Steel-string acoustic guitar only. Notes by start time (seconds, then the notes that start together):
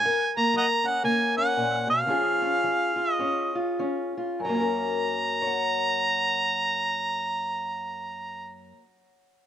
0.05 F#2 A#4
0.37 A#3
0.54 F#3
0.84 C#4
1.04 C#3 A#3
1.37 C#4
1.57 A#2
1.87 B2
2.06 C#3 F3 C#4 F4 G#4
2.42 C#4
2.64 F3
2.96 F4
3.19 G#2 C#4
3.55 F4
3.79 F3 C#4
4.17 F4
4.40 F#2
4.45 F#3
4.49 A#3
4.54 C#4
4.60 A#4
5.42 C#5
5.47 F#5